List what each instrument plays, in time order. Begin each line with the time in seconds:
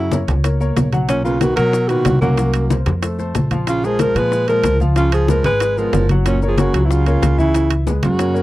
Already playing: upright bass F#2, baritone saxophone C#3, alto saxophone E4
0.11 grand piano A#3 A#4 C#5, high bongo, high conga, maracas
0.27 upright bass C#2, high bongo, high conga, high timbale, maracas
0.44 grand piano A#3 A#4 C#5, high bongo, high conga, high timbale, maracas
0.60 grand piano A#3 A#4 C#5, high bongo, high conga, maracas
0.76 upright bass B1, high bongo, low bongo, high conga, high timbale, low timbale, maracas
0.93 grand piano F#3 F#4 F#5, high bongo, high conga, high timbale, maracas
1.09 baritone saxophone A#2, alto saxophone C#4, high bongo, high conga, high timbale, maracas
1.24 baritone saxophone C#3, grand piano A#3 A#4 B4, alto saxophone F4, high bongo, high conga, maracas
1.40 baritone saxophone D#3, grand piano A#3 A#4 B4, alto saxophone F#4, high bongo, high conga, high timbale, maracas
1.56 upright bass B2, baritone saxophone F#3, grand piano F#3 F#4 F#5, alto saxophone A#4, high conga, high timbale, maracas
1.73 high bongo, high conga, maracas
1.88 grand piano A#2 A#4 B4, baritone saxophone D#3, alto saxophone F#4, high bongo, high conga, high timbale, maracas
2.05 upright bass C2, high bongo, low bongo, high conga, high timbale, low timbale, maracas
2.21 baritone saxophone F#2, grand piano F#3 F#4 F#5, alto saxophone A#3, high bongo, high conga, maracas
2.38 grand piano F#3 F#4 F#5, high bongo, high timbale, maracas
2.54 high conga, high timbale, maracas
2.70 grand piano A#3 A#4 C5, high bongo, high conga, maracas
2.86 upright bass F2, high bongo, high conga, high timbale, maracas
3.03 grand piano A3 A4 C5, high bongo, high conga, high timbale, maracas
3.19 grand piano A3 A4 C5, high bongo, high conga, maracas
3.34 upright bass A#1, high bongo, low bongo, high conga, high timbale, maracas
3.51 grand piano F3 F4 F5, high bongo, high conga, high timbale, maracas
3.67 baritone saxophone C#3, alto saxophone F4, high bongo, high conga, high timbale, maracas
3.83 baritone saxophone F3, grand piano G#3 G#4 A#4, alto saxophone G#4, high bongo, high conga, maracas
3.99 baritone saxophone F3, grand piano G#3 G#4 A#4, alto saxophone A#4, high bongo, high conga, high timbale, maracas
4.15 upright bass A#2, grand piano F3 F4 F5, baritone saxophone G#3, alto saxophone B4, high conga, high timbale, maracas
4.32 high bongo, high conga, maracas
4.48 baritone saxophone F3, grand piano G#3 G#4 A#4, alto saxophone A#4, high bongo, high conga, high timbale, maracas
4.63 upright bass C#2, high bongo, low bongo, high conga, high timbale, maracas
4.80 grand piano F3 F4 F5, high bongo, high conga, maracas
4.96 baritone saxophone C#3, grand piano F3 F4 F5, alto saxophone F4, high bongo, high timbale, maracas
5.12 baritone saxophone F3, alto saxophone G#4, high conga, high timbale, maracas
5.28 baritone saxophone F3, grand piano G#3 G#4 B4, alto saxophone A#4, high bongo, high conga, maracas
5.44 upright bass G#1, baritone saxophone G#3, alto saxophone B4, high bongo, high conga, high timbale, maracas
5.60 grand piano G#3 G#4 B4, high bongo, high conga, high timbale, maracas
5.77 baritone saxophone F3, grand piano G#3 B3 G#4, alto saxophone A#4, high bongo, high conga, maracas
5.93 upright bass F#1, high bongo, low bongo, high conga, high timbale, low timbale, maracas
6.09 grand piano F#3 F#4 F#5, high bongo, high conga, high timbale, maracas
6.25 baritone saxophone A#2, alto saxophone C#4, high bongo, high timbale, maracas
6.42 grand piano A#3 A#4 C#5, high bongo, high conga, maracas
6.47 baritone saxophone F3, alto saxophone G#4
6.58 baritone saxophone C#3, grand piano A#3 A#4 C#5, alto saxophone F#4, high bongo, high conga, high timbale, maracas
6.73 upright bass C#2, grand piano F#3 F#4 F#5, high conga, high timbale, maracas
6.84 baritone saxophone B2, alto saxophone E4
6.90 baritone saxophone C#3, alto saxophone F4, high bongo, high conga, maracas
7.06 grand piano A#3 A#4 C#5, high bongo, high conga, high timbale, maracas
7.22 upright bass C#2, high bongo, low bongo, high conga, high timbale, maracas
7.38 baritone saxophone C#3, grand piano E3 E4 E5, alto saxophone E4, high bongo, high conga, maracas
7.54 grand piano E3 E4 E5, high bongo, high conga, high timbale, maracas
7.71 high conga, high timbale, maracas
7.87 grand piano G#3 G#4 B4, high bongo, high conga, maracas
8.03 upright bass F#2, baritone saxophone C#3, alto saxophone F#4, high bongo, high conga, high timbale, maracas
8.19 grand piano A#3 A#4 C#5, high bongo, high conga, high timbale, maracas
8.34 grand piano A#3 A#4 C#5, high bongo, high conga, maracas